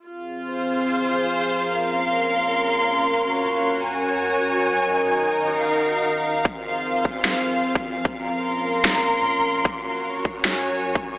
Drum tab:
SD |----------------|----------------|----------------|----------------|
BD |----------------|----------------|----------------|----------------|

SD |--------o-------|--------o-------|--------o-------|
BD |o-----o------o--|o---------------|o-----o------o--|